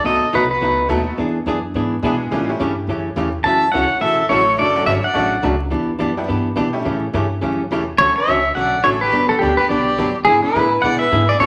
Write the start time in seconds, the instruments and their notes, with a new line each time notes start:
0.04 upright bass B1, hollow-body jazz guitar B2 F#3 A3 D#4 F#4, fiddle A4, pedal steel guitar D#5
0.22 muted upright bass stroke
0.33 upright bass C2, hollow-body jazz guitar B2 F#3 A3 D#4 F#4, fiddle F#4, pedal steel guitar B4
0.51 fiddle F#4, pedal steel guitar B4
0.61 upright bass C#2, hollow-body jazz guitar B2 F#3 A3 D#4 F#4
0.88 upright bass D#2, hollow-body jazz guitar B2 F#3 A3 D#4 F#4, honky-tonk piano A3 B3 D#4 F#4 A4
1.17 upright bass E2, hollow-body jazz guitar E3 B3 D4 G#4
1.46 upright bass F#2, hollow-body jazz guitar E3 B3 D4 G#4
1.74 upright bass G#2, hollow-body jazz guitar E3 B3 D4 G#4
2.02 upright bass B2, hollow-body jazz guitar E3 B3 D4 G#4, honky-tonk piano G#3 B3 D4 E4 G#4
2.31 upright bass A2, hollow-body jazz guitar C#3 E3 A3 C#4 G4, honky-tonk piano G#3 A#3 D4 F4 G#4
2.49 honky-tonk piano G3 A3 C#4 E4 G4
2.60 upright bass G2, hollow-body jazz guitar C#3 E3 A3 C#4 G4
2.87 upright bass F#2, hollow-body jazz guitar C#3 E3 A3 C#4 G4
3.16 upright bass E2, hollow-body jazz guitar C#3 E3 A3 C#4 G4
3.44 upright bass F#2, hollow-body jazz guitar C#3 E3 A3 C#4 F#4, fiddle E5, pedal steel guitar A5
3.72 upright bass C#2, hollow-body jazz guitar C#3 E3 A3 C#4 F#4, fiddle C#5, pedal steel guitar F#5
3.91 muted upright bass stroke
4.00 upright bass B1, hollow-body jazz guitar C#3 E3 A3 C#4 F#4, fiddle A4, pedal steel guitar E5
4.29 upright bass A1, hollow-body jazz guitar C#3 E3 A3 C#4 F#4, honky-tonk piano F#3 A3 C#4 E4 F#4, fiddle A4, pedal steel guitar C#5
4.58 upright bass F#1, hollow-body jazz guitar C#3 F#3 A3 D4 F#4, fiddle A4, pedal steel guitar D5
4.75 honky-tonk piano F#3 A3 C#4 D4 F#4
4.86 upright bass G1, hollow-body jazz guitar C#3 F#3 A3 D4 F#4, fiddle C#5, pedal steel guitar E5
5.04 fiddle D5, pedal steel guitar F#5, muted upright bass stroke
5.14 upright bass A1, hollow-body jazz guitar C#3 F#3 A3 D4 F#4, honky-tonk piano F#3 A3 C#4 D4 F#4
5.43 upright bass C#2, hollow-body jazz guitar C#3 F#3 A3 D4 F#4
5.71 upright bass E2, hollow-body jazz guitar E3 B3 D4 G4
5.99 upright bass F#2, hollow-body jazz guitar E3 B3 D4 G4
6.17 honky-tonk piano G3 B3 D4 E4 G4
6.28 upright bass G2, hollow-body jazz guitar E3 B3 D4 G4
6.56 upright bass B2, hollow-body jazz guitar E3 B3 D4 G4
6.73 honky-tonk piano G3 A3 C#4 E4 G4
6.85 upright bass A2, hollow-body jazz guitar C#3 E3 A3 C#4 G4
7.13 upright bass G2, hollow-body jazz guitar C#3 E3 A3 C#4 G4
7.41 upright bass F#2, hollow-body jazz guitar C#3 E3 A3 C#4 G4
7.71 upright bass E2, hollow-body jazz guitar C#3 E3 A3 C#4 G4
7.98 upright bass D2, hollow-body jazz guitar D3 F#3 A3 C#4 F#4, fiddle A4, pedal steel guitar C#5
8.16 fiddle C#5, pedal steel guitar E5, muted upright bass stroke
8.27 upright bass C#2, hollow-body jazz guitar D3 F#3 A3 C#4 F#4
8.55 upright bass B1, hollow-body jazz guitar D3 F#3 A3 C#4 F#4, fiddle D5, pedal steel guitar F#5
8.84 upright bass A1, hollow-body jazz guitar D3 F#3 A3 C#4 F#4, fiddle A4, pedal steel guitar C#5
9.01 fiddle G4, pedal steel guitar B4
9.12 upright bass G1, hollow-body jazz guitar D3 F#3 B3 D4 G4
9.29 fiddle F#4, pedal steel guitar A4
9.39 upright bass D2, hollow-body jazz guitar D3 F#3 B3 D4, fiddle D4, pedal steel guitar G4
9.43 hollow-body jazz guitar G4
9.57 fiddle G4, pedal steel guitar B4, muted upright bass stroke
9.69 upright bass B1, hollow-body jazz guitar D3 F#3 B3 D4 G4, fiddle G4, pedal steel guitar D5
9.98 upright bass F#2, hollow-body jazz guitar D3 F#3 B3 D4 G4
10.17 muted upright bass stroke
10.25 upright bass G#2, hollow-body jazz guitar D3 G#3 B3 E4 G#4, fiddle E4, pedal steel guitar G#4
10.42 fiddle E4, pedal steel guitar B4, muted upright bass stroke
10.55 upright bass A2, hollow-body jazz guitar D3 G#3 B3 E4 G#4
10.82 upright bass B2, hollow-body jazz guitar D3 G#3 B3 E4 G#4, fiddle D5, pedal steel guitar F#5
10.99 fiddle B4, pedal steel guitar E5
11.11 upright bass G#2, hollow-body jazz guitar D3 G#3 B3 E4 G#4
11.28 fiddle G#4, pedal steel guitar D5
11.39 hollow-body jazz guitar C#3 E3 A3 C#4 F#4, fiddle A4, pedal steel guitar C#5